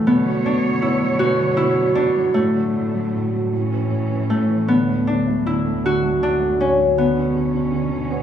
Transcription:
Already playing: E3 A3 C#4
0.07 B2 D3 B3 C#5
0.26 F#3
0.45 B2 D4
0.64 F#3
0.82 B2 E4
1.02 F#3
1.19 B2 F#4
1.41 F#3
1.57 B2 E4
1.78 F#3
1.95 B2 D4
2.16 F#3
2.34 A2 D3 F#3 A3
2.55 F#3
2.76 A2
2.94 F#3
3.14 A2
3.33 F#3
3.52 A2 E3 C#4
3.72 E3
3.91 A2
4.11 E3
4.30 A2 A3
4.49 E3
4.68 D2 D3 F#3 B3
4.88 A3
5.07 D3 D4
5.28 A3
5.46 D3 E4
5.65 A3
5.84 D3 F#4
6.03 A3
6.21 D3 D4
6.40 A3
6.58 D3 C#4
6.77 A3
6.96 B2 D3 B3 C#4
7.14 D3
7.34 D3
7.53 D3
7.72 D3
7.91 D3
8.10 B3

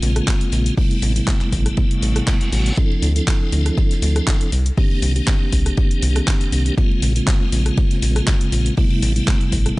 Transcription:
Already playing: C#3 G#3 A#3 C4 F4
0.02 A#1, snare, open hi-hat, ride
0.16 cross-stick, closed hi-hat
0.27 kick, snare, clap, ride
0.41 closed hi-hat
0.52 A#1, open hi-hat, ride
0.66 closed hi-hat
0.77 C3 G3 A3 B3 E4, kick, open hi-hat
0.91 closed hi-hat, ride
1.02 A1, open hi-hat, ride
1.16 C3 G3 A3 B3 E4, closed hi-hat
1.27 kick, snare, clap, ride
1.41 clap, closed hi-hat
1.52 A1, kick, open hi-hat, ride
1.66 cross-stick, closed hi-hat
1.77 kick, ride, reverse cymbal
1.91 closed hi-hat
2.02 A1, open hi-hat, ride
2.16 cross-stick, closed hi-hat
2.27 kick, snare, clap, ride
2.41 closed hi-hat, ride
2.52 A1 C3 G3 A3 B3 F#4, open hi-hat, ride
2.66 closed hi-hat
2.77 F3 C4 D4 E4 A4, kick, ride
2.91 ride
3.02 D2, open hi-hat, ride
3.16 F3 C4 D4 E4 A4, closed hi-hat
3.27 kick, snare, clap, ride
3.52 D2, open hi-hat, ride
3.66 cross-stick, closed hi-hat
3.78 kick, ride
3.91 snare, closed hi-hat
4.02 D2, snare, open hi-hat, ride
4.16 cross-stick, closed hi-hat
4.27 kick, snare, clap, ride
4.41 closed hi-hat
4.52 C2, open hi-hat, ride
4.66 closed hi-hat
4.77 D#3 A#3 C4 D4 G4, kick, open hi-hat
4.91 ride
5.02 C2, open hi-hat, ride
5.16 D#3 A#3 C4 D4 G4, closed hi-hat
5.28 kick, snare, clap, ride
5.52 C2, kick, open hi-hat, ride
5.66 cross-stick, closed hi-hat
5.77 kick, ride
5.91 closed hi-hat
6.02 C2, open hi-hat, ride
6.16 cross-stick, closed hi-hat
6.27 kick, snare, clap, ride
6.41 closed hi-hat, ride
6.52 C2, open hi-hat, ride
6.66 closed hi-hat
6.77 C#3 G#3 A#3 C4 F4, kick, ride
6.91 ride
7.02 A#1, open hi-hat, ride
7.16 C#3 G#3 A#3 C4 F4, closed hi-hat
7.27 kick, snare, clap, ride
7.52 A#1, open hi-hat, ride
7.66 cross-stick, closed hi-hat
7.77 kick, ride
7.91 snare, closed hi-hat
8.02 A#1, snare, open hi-hat, ride
8.16 cross-stick, closed hi-hat
8.27 kick, snare, clap, ride
8.41 closed hi-hat
8.52 A#1, open hi-hat, ride
8.66 closed hi-hat
8.77 C3 G3 A3 B3 E4, kick, open hi-hat
8.90 ride
9.02 A1, open hi-hat, ride
9.16 C3 G3 A3 B3 E4, closed hi-hat
9.28 kick, snare, clap, ride
9.41 closed hi-hat
9.52 A1, kick, open hi-hat, ride
9.66 cross-stick, closed hi-hat

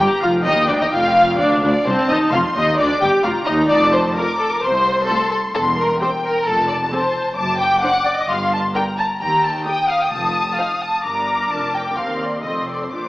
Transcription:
Already playing: G4
0.00 A#5
0.21 F1 F2 F4 F5
0.45 D#2 D#4 D#5 G5
0.67 D2 D4 D5
0.80 D#2 D#4 D#5
0.91 F1 F2 F4 F5
1.39 D2 D4 D5 F5
1.62 D2 D4 D5
1.85 C2 C4 C5 A5
2.08 D#2 D#4 D#5
2.32 F1 F2 F4 F5 C6
2.55 D#2 D#4 D#5
2.78 D2 D4 D5 D6
3.01 G1 G2 G4 G5
3.23 F1 F2 F4 F5 A#5
3.46 D#2 D#4 D#5
3.69 F1 F2 D5 A5
3.94 C5
4.15 A3 F4 A#4 D6
4.39 A4
4.51 A#4
4.64 C2 C5 C6
5.07 A3 F4 A4
5.31 A4
5.54 E1 E2 A4 C6
5.77 A#4
6.00 C4 G4 C5 G5
6.24 A#4
6.46 F1 F2 A4 A5
6.68 D5
6.92 C4 A4 C5
7.37 F#1 F#2 A5 D6
7.59 G5
7.82 D4 C5 F#5
8.06 D5
8.19 D#5
8.28 G1 G2 F5 C6
8.53 A5
8.74 D4 A#4 G5 A#5
8.98 A5
9.21 D#2 G5 A#5
9.45 A5
9.65 D#4 G4 G5 D#6
9.90 F5
10.02 G5
10.12 F1 F2 A5
10.57 D#4 C5 F5
10.82 A5
11.05 G1 G2 D4 A#4 A#5 D6
11.50 F1 F2 A5
11.75 G5
11.96 D#2 C4 A#4 F5 C6
12.21 D5
12.44 F1 F2 C4 A4 D#5 C6
12.70 D5
12.82 C5
12.93 A#1 A#2 D4 F4 C5 D6

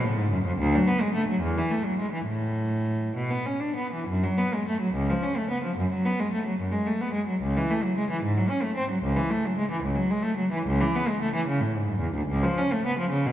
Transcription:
0.04 A2
0.17 G#2
0.31 F#2
0.45 F2
0.58 D2
0.75 F#3
0.87 B3
1.01 G#3
1.14 A3
1.29 F#3
1.42 E2
1.58 E3
1.70 A3
1.85 F#3
1.99 G#3
2.13 E3
2.26 A2
3.16 B2
3.31 B3
3.45 C#4
3.60 D4
3.76 B3
3.93 E3
4.08 F#2
4.23 F#3
4.38 B3
4.54 G#3
4.68 A3
4.80 F#3
4.94 C#2
5.10 F3
5.23 C#4
5.37 A3
5.50 B3
5.64 F3
5.76 F#2
5.93 F#3
6.05 B3
6.20 G#3
6.33 A3
6.46 F#3
6.60 F#2
6.72 G#3
6.86 A3
7.01 B3
7.13 G#3
7.27 F#3
7.41 C#2
7.56 E3
7.70 A3
7.83 F#3
7.98 G#3
8.11 E3
8.23 G#2
8.37 F#3
8.49 C#4
8.62 A3
8.77 C4
8.91 F#3
9.03 C#2
9.16 E3
9.30 A3
9.45 F#3
9.58 G#3
9.71 E3
9.83 C#2
9.95 F#3
10.10 G#3
10.23 A3
10.37 F#3
10.52 E3
10.66 C#2
10.81 E3
10.95 B3
11.08 G#3
11.22 A3
11.34 E3
11.48 C#3
11.61 A2
11.74 G#2
11.87 F#2
12.00 E2
12.14 D2
12.28 C#2
12.43 F3
12.57 C#4
12.72 A3
12.86 B3
12.99 F3
13.10 C#3
13.26 B2

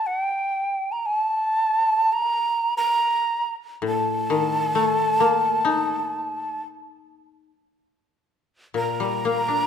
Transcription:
0.06 F#5
0.20 G5
0.92 A#5
1.06 A5
2.13 A#5
2.77 A#5
3.82 A2
3.88 A5
4.30 D#3
4.75 A3
5.20 A#3
5.65 D#4
8.74 A#2 A#5
9.00 G3
9.25 A#3
9.48 D4

